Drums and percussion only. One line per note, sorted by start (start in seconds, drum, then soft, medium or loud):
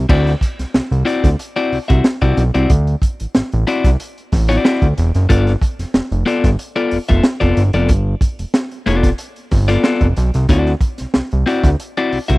0.09 kick loud
0.09 crash loud
0.27 snare soft
0.27 closed hi-hat soft
0.41 kick medium
0.41 closed hi-hat medium
0.59 snare soft
0.59 closed hi-hat medium
0.74 snare loud
0.92 closed hi-hat soft
1.07 snare soft
1.07 closed hi-hat medium
1.24 kick loud
1.24 snare soft
1.24 closed hi-hat medium
1.39 closed hi-hat medium
1.57 closed hi-hat soft
1.73 open hi-hat medium
1.90 kick medium
1.90 closed hi-hat medium
2.04 snare loud
2.21 kick loud
2.21 closed hi-hat soft
2.37 snare soft
2.37 closed hi-hat medium
2.54 closed hi-hat medium
2.70 kick loud
2.70 closed hi-hat medium
2.87 closed hi-hat soft
3.02 kick medium
3.02 closed hi-hat medium
3.20 closed hi-hat medium
3.35 snare loud
3.52 closed hi-hat soft
3.67 closed hi-hat medium
3.84 kick loud
3.84 snare soft
3.84 closed hi-hat medium
4.00 closed hi-hat loud
4.18 closed hi-hat soft
4.32 kick medium
4.32 snare soft
4.32 open hi-hat medium
4.50 snare soft
4.50 closed hi-hat medium
4.65 snare loud
4.82 kick loud
4.82 closed hi-hat soft
4.98 snare soft
4.98 closed hi-hat medium
5.15 snare soft
5.15 closed hi-hat medium
5.30 kick loud
5.30 closed hi-hat medium
5.47 snare soft
5.47 closed hi-hat soft
5.62 kick medium
5.62 closed hi-hat medium
5.79 snare soft
5.79 closed hi-hat medium
5.94 snare loud
6.12 closed hi-hat soft
6.28 snare soft
6.28 closed hi-hat medium
6.44 kick medium
6.44 snare soft
6.44 closed hi-hat medium
6.59 closed hi-hat loud
6.77 closed hi-hat soft
6.91 open hi-hat medium
7.08 kick medium
7.08 closed hi-hat medium
7.23 snare loud
7.41 kick medium
7.41 closed hi-hat soft
7.57 snare soft
7.57 closed hi-hat medium
7.73 closed hi-hat medium
7.89 kick loud
7.89 closed hi-hat medium
8.21 kick medium
8.21 closed hi-hat medium
8.39 closed hi-hat medium
8.54 snare loud
8.71 closed hi-hat soft
8.87 closed hi-hat medium
9.03 kick medium
9.03 snare soft
9.03 closed hi-hat medium
9.18 closed hi-hat medium
9.36 closed hi-hat soft
9.51 kick medium
9.51 snare soft
9.51 open hi-hat medium
9.69 snare soft
9.69 closed hi-hat medium
9.84 snare loud
10.01 kick loud
10.01 closed hi-hat soft
10.17 snare soft
10.17 closed hi-hat medium
10.34 snare soft
10.34 closed hi-hat medium
10.49 kick loud
10.49 closed hi-hat medium
10.66 snare soft
10.81 kick loud
10.81 closed hi-hat medium
10.98 snare soft
10.98 closed hi-hat medium
11.14 snare loud
11.32 closed hi-hat soft
11.47 snare soft
11.47 closed hi-hat medium
11.64 kick loud
11.64 snare soft
11.64 closed hi-hat medium
11.80 closed hi-hat loud
11.97 closed hi-hat soft
12.12 open hi-hat medium
12.29 kick medium
12.29 closed hi-hat medium